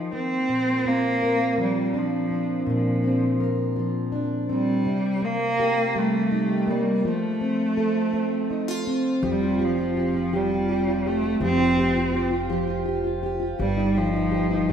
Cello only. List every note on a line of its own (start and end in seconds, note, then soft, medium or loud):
0.00 0.12 F3 medium
0.14 0.89 C4 medium
0.88 1.59 A#3 medium
1.61 2.00 G3 medium
1.98 2.69 F3 medium
2.72 3.48 F3 medium
4.51 5.26 G3 medium
5.24 5.99 A#3 medium
5.97 6.72 A3 medium
6.70 7.06 G3 medium
7.07 8.84 A3 medium
9.28 9.66 G3 medium
9.64 10.37 F3 medium
10.35 11.09 G3 medium
11.07 11.42 A3 medium
11.43 12.20 C4 medium
13.60 13.99 G3 medium
13.98 14.72 F3 medium